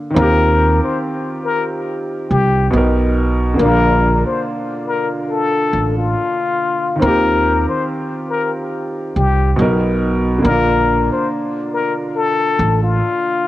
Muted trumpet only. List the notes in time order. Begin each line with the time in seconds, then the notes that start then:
0.15 A#4
0.83 C5
1.45 A#4
2.31 G4
3.59 A#4
4.27 C5
4.87 A#4
5.30 A4
5.98 F4
7.01 A#4
7.69 C5
8.30 A#4
9.15 G4
10.44 A#4
11.12 C5
11.73 A#4
12.16 A4
12.83 F4